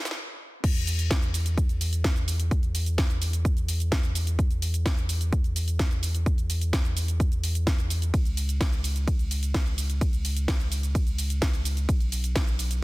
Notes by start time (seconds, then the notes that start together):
Already playing: B1
0.05 snare, closed hi-hat, shaker
0.11 snare
0.64 E2, kick, closed hi-hat, crash, shaker
0.76 closed hi-hat, shaker
0.87 open hi-hat, shaker
0.99 closed hi-hat, shaker
1.11 kick, snare, closed hi-hat, shaker
1.22 closed hi-hat, shaker
1.34 open hi-hat, shaker
1.46 closed hi-hat, shaker
1.58 kick, closed hi-hat, shaker
1.69 closed hi-hat, shaker
1.81 open hi-hat, shaker
1.93 closed hi-hat, shaker
2.04 kick, snare, closed hi-hat, shaker
2.16 closed hi-hat, shaker
2.28 open hi-hat, shaker
2.40 closed hi-hat, shaker
2.51 kick, closed hi-hat, shaker
2.63 closed hi-hat, shaker
2.75 open hi-hat, shaker
2.86 closed hi-hat, shaker
2.98 kick, snare, closed hi-hat, shaker
3.10 closed hi-hat, shaker
3.22 open hi-hat, shaker
3.33 closed hi-hat, shaker
3.45 kick, closed hi-hat, shaker
3.57 closed hi-hat, shaker
3.68 open hi-hat, shaker
3.80 closed hi-hat, shaker
3.92 kick, snare, closed hi-hat, shaker
4.04 closed hi-hat, shaker
4.15 open hi-hat, shaker
4.27 closed hi-hat, shaker
4.39 kick, closed hi-hat, shaker
4.51 closed hi-hat, shaker
4.62 open hi-hat, shaker
4.74 closed hi-hat, shaker
4.86 kick, snare, closed hi-hat, shaker
4.97 closed hi-hat, shaker
5.09 open hi-hat, shaker
5.21 closed hi-hat, shaker
5.33 kick, closed hi-hat, shaker
5.44 closed hi-hat, shaker
5.56 open hi-hat, shaker
5.68 closed hi-hat, shaker
5.79 kick, snare, closed hi-hat, shaker
5.91 closed hi-hat, shaker
6.03 open hi-hat, shaker
6.15 closed hi-hat, shaker
6.26 kick, closed hi-hat, shaker
6.38 closed hi-hat, shaker
6.50 open hi-hat, shaker
6.61 closed hi-hat, shaker
6.73 kick, snare, closed hi-hat, shaker
6.85 closed hi-hat, shaker
6.97 open hi-hat, shaker
7.08 closed hi-hat, shaker
7.20 kick, closed hi-hat, shaker
7.32 closed hi-hat, shaker
7.43 open hi-hat, shaker
7.55 closed hi-hat, shaker
7.67 kick, snare, closed hi-hat, shaker
7.79 closed hi-hat, shaker
7.90 open hi-hat, shaker
8.02 closed hi-hat, shaker
8.14 C#2, kick, closed hi-hat, ride, shaker
8.25 closed hi-hat, shaker
8.37 open hi-hat, shaker
8.49 closed hi-hat, shaker
8.61 kick, snare, closed hi-hat, ride, shaker
8.72 closed hi-hat, shaker
8.84 open hi-hat, shaker
8.96 closed hi-hat, shaker
9.08 kick, closed hi-hat, ride, shaker
9.19 closed hi-hat, shaker
9.31 open hi-hat, shaker
9.43 closed hi-hat, shaker
9.54 kick, snare, closed hi-hat, ride, shaker
9.66 closed hi-hat, shaker
9.78 open hi-hat, shaker
9.90 closed hi-hat, shaker
10.01 kick, closed hi-hat, ride, shaker
10.13 closed hi-hat, shaker
10.25 open hi-hat, shaker
10.36 closed hi-hat, shaker
10.48 kick, snare, closed hi-hat, ride, shaker
10.60 closed hi-hat, shaker
10.72 open hi-hat, shaker
10.83 closed hi-hat, shaker
10.95 kick, closed hi-hat, ride, shaker
11.07 closed hi-hat, shaker
11.18 open hi-hat, shaker
11.30 closed hi-hat, shaker
11.42 kick, snare, closed hi-hat, ride, shaker
11.54 closed hi-hat, shaker
11.65 open hi-hat, shaker
11.77 closed hi-hat, shaker
11.89 B1, kick, closed hi-hat, ride, shaker
12.00 closed hi-hat, shaker
12.12 open hi-hat, shaker
12.24 closed hi-hat, shaker
12.36 kick, snare, closed hi-hat, ride, shaker
12.47 closed hi-hat, shaker
12.59 open hi-hat, shaker
12.71 closed hi-hat, shaker